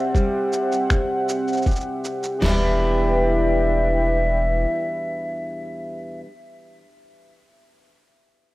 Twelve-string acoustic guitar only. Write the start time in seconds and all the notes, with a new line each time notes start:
Already playing: C3 G3 G4
0.15 G3
1.67 G4
2.40 E2 B2
2.44 E3 G3 D4
2.49 G4